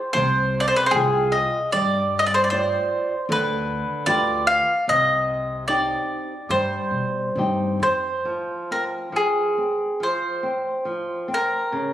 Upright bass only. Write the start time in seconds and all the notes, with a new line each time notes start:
0.15 C2
0.93 C2
1.73 G2
3.29 D2
4.07 D2
4.88 C2
6.49 G2
6.91 B2
7.35 G2
7.80 F2